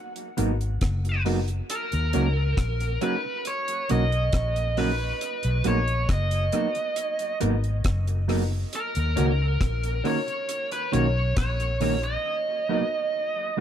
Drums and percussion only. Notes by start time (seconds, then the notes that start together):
0.16 closed hi-hat
0.38 closed hi-hat
0.61 closed hi-hat
0.81 kick, cross-stick, closed hi-hat
1.05 closed hi-hat
1.26 open hi-hat
1.48 closed hi-hat
1.70 closed hi-hat
1.92 closed hi-hat
2.13 closed hi-hat
2.57 kick, cross-stick, closed hi-hat
2.80 closed hi-hat
3.01 closed hi-hat
3.45 closed hi-hat
3.68 closed hi-hat
3.89 closed hi-hat
4.12 closed hi-hat
4.33 kick, cross-stick, closed hi-hat
4.56 closed hi-hat
4.77 open hi-hat
5.21 closed hi-hat
5.43 closed hi-hat
5.64 closed hi-hat
5.88 closed hi-hat
6.09 kick, cross-stick, closed hi-hat
6.31 closed hi-hat
6.52 closed hi-hat
6.75 closed hi-hat
6.96 closed hi-hat
7.19 closed hi-hat
7.41 closed hi-hat
7.64 closed hi-hat
7.84 kick, cross-stick, closed hi-hat
8.07 closed hi-hat
8.29 open hi-hat
8.73 closed hi-hat
8.95 closed hi-hat
9.17 closed hi-hat
9.61 kick, cross-stick, closed hi-hat
9.83 closed hi-hat
10.05 open hi-hat
10.28 closed hi-hat
10.49 closed hi-hat
10.71 closed hi-hat
10.93 closed hi-hat
11.37 kick, cross-stick, closed hi-hat
11.60 closed hi-hat
11.81 open hi-hat
12.03 closed hi-hat